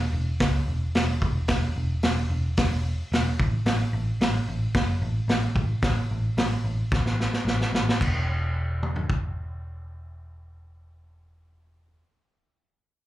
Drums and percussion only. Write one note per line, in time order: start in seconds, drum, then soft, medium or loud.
0.40 kick loud
0.40 snare loud
0.40 open hi-hat medium
0.95 snare loud
0.95 open hi-hat medium
1.22 kick medium
1.48 kick loud
1.48 snare loud
1.48 open hi-hat medium
2.03 snare loud
2.03 open hi-hat medium
2.57 kick loud
2.57 snare loud
2.57 open hi-hat medium
3.13 snare loud
3.13 open hi-hat medium
3.40 kick medium
3.66 snare loud
3.66 open hi-hat medium
4.21 snare loud
4.21 open hi-hat medium
4.75 kick loud
4.75 snare loud
4.75 open hi-hat medium
5.29 snare loud
5.29 open hi-hat soft
5.56 kick medium
5.82 kick loud
5.82 snare loud
5.82 open hi-hat soft
6.37 snare loud
6.37 open hi-hat medium
6.92 kick loud
6.92 snare medium
7.06 snare medium
7.20 snare medium
7.33 snare medium
7.47 snare medium
7.61 snare medium
7.75 snare medium
7.89 snare medium
8.01 kick loud
8.01 crash medium
8.83 mid tom medium
8.96 floor tom medium
9.10 kick medium